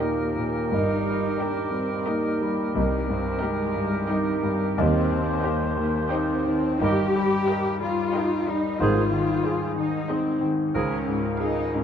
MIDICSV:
0, 0, Header, 1, 12, 480
1, 0, Start_track
1, 0, Tempo, 717703
1, 487, Time_signature, 3, 2, 24, 8
1, 487, Tempo, 678733
1, 3367, Tempo, 657174
1, 4327, Tempo, 711744
1, 4807, Tempo, 656455
1, 8471, End_track
2, 0, Start_track
2, 0, Title_t, "Violin section"
2, 0, Program_c, 0, 48
2, 0, Note_on_c, 0, 79, 43
2, 362, Note_off_c, 0, 79, 0
2, 957, Note_on_c, 0, 79, 41
2, 1317, Note_off_c, 0, 79, 0
2, 1436, Note_on_c, 0, 79, 49
2, 1800, Note_off_c, 0, 79, 0
2, 2396, Note_on_c, 0, 79, 48
2, 2747, Note_off_c, 0, 79, 0
2, 2869, Note_on_c, 0, 79, 51
2, 3240, Note_off_c, 0, 79, 0
2, 3838, Note_on_c, 0, 79, 53
2, 4199, Note_off_c, 0, 79, 0
2, 4324, Note_on_c, 0, 79, 61
2, 4683, Note_off_c, 0, 79, 0
2, 5288, Note_on_c, 0, 79, 48
2, 5644, Note_off_c, 0, 79, 0
2, 5774, Note_on_c, 0, 79, 59
2, 6132, Note_off_c, 0, 79, 0
2, 6724, Note_on_c, 0, 75, 45
2, 7075, Note_off_c, 0, 75, 0
2, 7197, Note_on_c, 0, 75, 53
2, 7552, Note_off_c, 0, 75, 0
2, 8148, Note_on_c, 0, 77, 44
2, 8471, Note_off_c, 0, 77, 0
2, 8471, End_track
3, 0, Start_track
3, 0, Title_t, "Violin section"
3, 0, Program_c, 1, 48
3, 0, Note_on_c, 1, 75, 51
3, 362, Note_off_c, 1, 75, 0
3, 961, Note_on_c, 1, 75, 45
3, 1319, Note_off_c, 1, 75, 0
3, 1435, Note_on_c, 1, 75, 53
3, 1800, Note_off_c, 1, 75, 0
3, 2399, Note_on_c, 1, 75, 52
3, 2749, Note_off_c, 1, 75, 0
3, 2870, Note_on_c, 1, 75, 56
3, 3241, Note_off_c, 1, 75, 0
3, 3835, Note_on_c, 1, 75, 52
3, 4197, Note_off_c, 1, 75, 0
3, 4326, Note_on_c, 1, 75, 68
3, 4683, Note_off_c, 1, 75, 0
3, 5291, Note_on_c, 1, 75, 61
3, 5645, Note_off_c, 1, 75, 0
3, 5770, Note_on_c, 1, 75, 63
3, 6129, Note_off_c, 1, 75, 0
3, 6728, Note_on_c, 1, 72, 61
3, 7077, Note_off_c, 1, 72, 0
3, 7201, Note_on_c, 1, 72, 56
3, 7554, Note_off_c, 1, 72, 0
3, 8150, Note_on_c, 1, 70, 46
3, 8471, Note_off_c, 1, 70, 0
3, 8471, End_track
4, 0, Start_track
4, 0, Title_t, "Cor anglais"
4, 0, Program_c, 2, 69
4, 0, Note_on_c, 2, 70, 49
4, 1900, Note_off_c, 2, 70, 0
4, 1923, Note_on_c, 2, 70, 52
4, 3335, Note_off_c, 2, 70, 0
4, 3369, Note_on_c, 2, 72, 62
4, 4693, Note_off_c, 2, 72, 0
4, 4807, Note_on_c, 2, 70, 61
4, 4981, Note_off_c, 2, 70, 0
4, 6249, Note_on_c, 2, 72, 59
4, 6416, Note_off_c, 2, 72, 0
4, 7672, Note_on_c, 2, 70, 53
4, 7840, Note_off_c, 2, 70, 0
4, 8471, End_track
5, 0, Start_track
5, 0, Title_t, "French horn section"
5, 0, Program_c, 3, 60
5, 491, Note_on_c, 3, 70, 46
5, 495, Note_on_c, 3, 75, 46
5, 658, Note_off_c, 3, 70, 0
5, 660, Note_off_c, 3, 75, 0
5, 1923, Note_on_c, 3, 75, 45
5, 1926, Note_on_c, 3, 70, 51
5, 2090, Note_off_c, 3, 75, 0
5, 2092, Note_off_c, 3, 70, 0
5, 3363, Note_on_c, 3, 75, 59
5, 3365, Note_on_c, 3, 67, 52
5, 3533, Note_off_c, 3, 75, 0
5, 3535, Note_off_c, 3, 67, 0
5, 4800, Note_on_c, 3, 67, 56
5, 4801, Note_on_c, 3, 75, 53
5, 4976, Note_off_c, 3, 67, 0
5, 4977, Note_off_c, 3, 75, 0
5, 6248, Note_on_c, 3, 68, 51
5, 6256, Note_on_c, 3, 72, 52
5, 6415, Note_off_c, 3, 68, 0
5, 6420, Note_off_c, 3, 72, 0
5, 7684, Note_on_c, 3, 65, 52
5, 7688, Note_on_c, 3, 70, 51
5, 8471, Note_off_c, 3, 65, 0
5, 8471, Note_off_c, 3, 70, 0
5, 8471, End_track
6, 0, Start_track
6, 0, Title_t, "Viola section"
6, 0, Program_c, 4, 48
6, 8, Note_on_c, 4, 70, 41
6, 366, Note_off_c, 4, 70, 0
6, 958, Note_on_c, 4, 70, 47
6, 1317, Note_off_c, 4, 70, 0
6, 1440, Note_on_c, 4, 70, 49
6, 1802, Note_off_c, 4, 70, 0
6, 2399, Note_on_c, 4, 70, 52
6, 2749, Note_off_c, 4, 70, 0
6, 2868, Note_on_c, 4, 70, 56
6, 3239, Note_off_c, 4, 70, 0
6, 3840, Note_on_c, 4, 72, 59
6, 4200, Note_off_c, 4, 72, 0
6, 4323, Note_on_c, 4, 72, 58
6, 4682, Note_off_c, 4, 72, 0
6, 5292, Note_on_c, 4, 70, 62
6, 5646, Note_off_c, 4, 70, 0
6, 5774, Note_on_c, 4, 70, 61
6, 6132, Note_off_c, 4, 70, 0
6, 6731, Note_on_c, 4, 68, 56
6, 7079, Note_off_c, 4, 68, 0
6, 7202, Note_on_c, 4, 68, 49
6, 7554, Note_off_c, 4, 68, 0
6, 8152, Note_on_c, 4, 68, 49
6, 8471, Note_off_c, 4, 68, 0
6, 8471, End_track
7, 0, Start_track
7, 0, Title_t, "Clarinet"
7, 0, Program_c, 5, 71
7, 0, Note_on_c, 5, 67, 43
7, 1901, Note_off_c, 5, 67, 0
7, 1930, Note_on_c, 5, 67, 45
7, 4695, Note_off_c, 5, 67, 0
7, 4810, Note_on_c, 5, 67, 60
7, 4983, Note_off_c, 5, 67, 0
7, 6267, Note_on_c, 5, 68, 60
7, 6427, Note_off_c, 5, 68, 0
7, 7683, Note_on_c, 5, 68, 51
7, 7847, Note_off_c, 5, 68, 0
7, 8471, End_track
8, 0, Start_track
8, 0, Title_t, "Cello section"
8, 0, Program_c, 6, 48
8, 5, Note_on_c, 6, 58, 63
8, 481, Note_on_c, 6, 63, 66
8, 486, Note_off_c, 6, 58, 0
8, 959, Note_on_c, 6, 62, 63
8, 962, Note_off_c, 6, 63, 0
8, 1198, Note_on_c, 6, 60, 57
8, 1201, Note_off_c, 6, 62, 0
8, 1437, Note_off_c, 6, 60, 0
8, 1440, Note_on_c, 6, 58, 63
8, 1926, Note_off_c, 6, 58, 0
8, 1927, Note_on_c, 6, 55, 62
8, 2157, Note_on_c, 6, 60, 66
8, 2165, Note_off_c, 6, 55, 0
8, 2392, Note_on_c, 6, 56, 79
8, 2395, Note_off_c, 6, 60, 0
8, 2864, Note_on_c, 6, 55, 66
8, 2866, Note_off_c, 6, 56, 0
8, 3363, Note_off_c, 6, 55, 0
8, 3364, Note_on_c, 6, 60, 71
8, 3834, Note_off_c, 6, 60, 0
8, 3846, Note_on_c, 6, 58, 77
8, 4072, Note_off_c, 6, 58, 0
8, 4080, Note_on_c, 6, 58, 71
8, 4320, Note_off_c, 6, 58, 0
8, 4322, Note_on_c, 6, 60, 71
8, 4805, Note_off_c, 6, 60, 0
8, 4805, Note_on_c, 6, 67, 87
8, 5529, Note_off_c, 6, 67, 0
8, 5529, Note_on_c, 6, 65, 83
8, 6001, Note_off_c, 6, 65, 0
8, 6011, Note_on_c, 6, 63, 73
8, 6250, Note_on_c, 6, 65, 76
8, 6253, Note_off_c, 6, 63, 0
8, 6957, Note_off_c, 6, 65, 0
8, 6959, Note_on_c, 6, 63, 71
8, 7193, Note_off_c, 6, 63, 0
8, 7197, Note_on_c, 6, 60, 65
8, 7436, Note_off_c, 6, 60, 0
8, 7675, Note_on_c, 6, 61, 74
8, 8130, Note_off_c, 6, 61, 0
8, 8157, Note_on_c, 6, 63, 71
8, 8400, Note_off_c, 6, 63, 0
8, 8405, Note_on_c, 6, 61, 62
8, 8471, Note_off_c, 6, 61, 0
8, 8471, End_track
9, 0, Start_track
9, 0, Title_t, "Bassoon"
9, 0, Program_c, 7, 70
9, 0, Note_on_c, 7, 51, 42
9, 1900, Note_off_c, 7, 51, 0
9, 1926, Note_on_c, 7, 51, 49
9, 4688, Note_off_c, 7, 51, 0
9, 4803, Note_on_c, 7, 51, 54
9, 4978, Note_off_c, 7, 51, 0
9, 6256, Note_on_c, 7, 51, 53
9, 6421, Note_off_c, 7, 51, 0
9, 7671, Note_on_c, 7, 53, 50
9, 7840, Note_off_c, 7, 53, 0
9, 8471, End_track
10, 0, Start_track
10, 0, Title_t, "Grand piano"
10, 0, Program_c, 8, 0
10, 0, Control_c, 8, 64, 127
10, 0, Note_on_c, 8, 39, 47
10, 0, Note_on_c, 8, 46, 36
10, 0, Note_on_c, 8, 67, 39
10, 5, Note_on_c, 8, 63, 42
10, 149, Note_off_c, 8, 46, 0
10, 240, Note_on_c, 8, 46, 40
10, 391, Note_off_c, 8, 63, 0
10, 459, Note_off_c, 8, 39, 0
10, 474, Note_on_c, 8, 43, 52
10, 484, Note_off_c, 8, 46, 0
10, 500, Control_c, 8, 64, 0
10, 502, Note_off_c, 8, 67, 0
10, 620, Control_c, 8, 64, 127
10, 722, Note_on_c, 8, 55, 36
10, 950, Note_on_c, 8, 67, 44
10, 1104, Note_off_c, 8, 55, 0
10, 1185, Note_on_c, 8, 55, 37
10, 1340, Note_off_c, 8, 67, 0
10, 1434, Note_on_c, 8, 63, 43
10, 1580, Note_off_c, 8, 55, 0
10, 1679, Note_on_c, 8, 55, 40
10, 1827, Note_off_c, 8, 63, 0
10, 1893, Note_off_c, 8, 43, 0
10, 1916, Note_on_c, 8, 36, 61
10, 1925, Note_off_c, 8, 55, 0
10, 1940, Control_c, 8, 64, 0
10, 2056, Control_c, 8, 64, 127
10, 2161, Note_on_c, 8, 43, 47
10, 2391, Note_on_c, 8, 67, 50
10, 2538, Note_off_c, 8, 43, 0
10, 2624, Note_on_c, 8, 43, 44
10, 2771, Note_off_c, 8, 67, 0
10, 2860, Note_on_c, 8, 63, 50
10, 3012, Note_off_c, 8, 43, 0
10, 3106, Note_on_c, 8, 43, 49
10, 3264, Note_off_c, 8, 63, 0
10, 3332, Note_off_c, 8, 36, 0
10, 3352, Note_on_c, 8, 39, 64
10, 3360, Note_off_c, 8, 43, 0
10, 3380, Control_c, 8, 64, 0
10, 3501, Control_c, 8, 64, 127
10, 3597, Note_on_c, 8, 51, 49
10, 3835, Note_on_c, 8, 67, 53
10, 3982, Note_off_c, 8, 51, 0
10, 4074, Note_on_c, 8, 51, 44
10, 4224, Note_off_c, 8, 67, 0
10, 4321, Note_on_c, 8, 63, 56
10, 4462, Note_off_c, 8, 51, 0
10, 4560, Note_on_c, 8, 51, 46
10, 4708, Note_off_c, 8, 63, 0
10, 4773, Note_off_c, 8, 39, 0
10, 4800, Note_on_c, 8, 43, 68
10, 4805, Note_off_c, 8, 51, 0
10, 4822, Control_c, 8, 64, 0
10, 4954, Control_c, 8, 64, 127
10, 5047, Note_on_c, 8, 55, 53
10, 5279, Note_on_c, 8, 70, 51
10, 5430, Note_off_c, 8, 55, 0
10, 5523, Note_on_c, 8, 55, 50
10, 5666, Note_off_c, 8, 70, 0
10, 5756, Note_on_c, 8, 63, 55
10, 5912, Note_off_c, 8, 55, 0
10, 6008, Note_on_c, 8, 55, 48
10, 6150, Note_off_c, 8, 63, 0
10, 6220, Note_off_c, 8, 43, 0
10, 6250, Note_on_c, 8, 44, 66
10, 6251, Note_off_c, 8, 55, 0
10, 6265, Control_c, 8, 64, 0
10, 6370, Control_c, 8, 64, 127
10, 6485, Note_on_c, 8, 51, 49
10, 6717, Note_on_c, 8, 68, 50
10, 6862, Note_off_c, 8, 51, 0
10, 6950, Note_on_c, 8, 51, 43
10, 7098, Note_off_c, 8, 68, 0
10, 7186, Note_on_c, 8, 63, 52
10, 7336, Note_off_c, 8, 51, 0
10, 7428, Note_on_c, 8, 51, 48
10, 7573, Note_off_c, 8, 63, 0
10, 7644, Note_off_c, 8, 44, 0
10, 7670, Note_off_c, 8, 51, 0
10, 7671, Note_on_c, 8, 37, 61
10, 7688, Control_c, 8, 64, 0
10, 7797, Control_c, 8, 64, 127
10, 7913, Note_on_c, 8, 44, 41
10, 8157, Note_on_c, 8, 68, 49
10, 8306, Note_off_c, 8, 44, 0
10, 8398, Note_on_c, 8, 44, 39
10, 8471, Note_off_c, 8, 37, 0
10, 8471, Note_off_c, 8, 44, 0
10, 8471, Note_off_c, 8, 68, 0
10, 8471, End_track
11, 0, Start_track
11, 0, Title_t, "Timpani"
11, 0, Program_c, 10, 47
11, 3366, Note_on_c, 10, 51, 56
11, 4055, Note_off_c, 10, 51, 0
11, 6258, Note_on_c, 10, 44, 59
11, 6932, Note_off_c, 10, 44, 0
11, 8471, End_track
12, 0, Start_track
12, 0, Title_t, "Double bass section"
12, 0, Program_c, 11, 48
12, 484, Note_on_c, 11, 31, 48
12, 864, Note_off_c, 11, 31, 0
12, 1924, Note_on_c, 11, 36, 58
12, 2300, Note_off_c, 11, 36, 0
12, 3364, Note_on_c, 11, 39, 59
12, 3744, Note_off_c, 11, 39, 0
12, 4802, Note_on_c, 11, 31, 57
12, 5191, Note_off_c, 11, 31, 0
12, 6251, Note_on_c, 11, 32, 58
12, 6625, Note_off_c, 11, 32, 0
12, 7677, Note_on_c, 11, 37, 54
12, 8057, Note_off_c, 11, 37, 0
12, 8471, End_track
0, 0, End_of_file